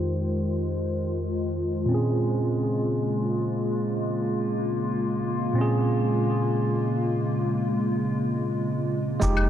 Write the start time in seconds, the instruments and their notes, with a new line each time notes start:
Already playing: tine electric piano F2 G#3 D#4 G4, ambient pad D#3 G#3 F4 C5
1.86 tine electric piano A#2 C4, ambient pad C#3
1.91 tine electric piano C#4 G#4
2.06 ambient pad A#3
5.53 tine electric piano A#2 C4
5.58 tine electric piano C#4 G#4
9.20 sub bass F1, ambient pad D#3, tine electric piano G#3 D#4 G4, kick, shaker
9.29 ambient pad C5
9.37 claves